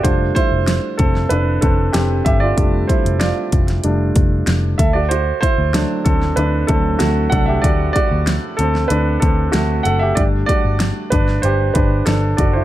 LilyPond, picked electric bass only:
\new Staff \with { instrumentName = "Picked electric bass" } { \clef bass \time 4/4 \key d \mixolydian \tempo 4 = 95 f,,8 r16 f,,8 r16 f,,8 f,,8 f,,8 f,,8 g,,8 | f,,8 r16 f,,8 r16 f,,8 f,,8 f,,8 f,,8 d,8~ | d,8 r16 d,8 r16 d,8 d,8 d,8 d,8 c,8 | d,8 r16 d,8 r16 d,8 d,8 d,8 d,8 fis,,8 |
g,,8 r16 g,,8 r16 g,,8 g,,8 g,,8 g,,8 fis,,8 | }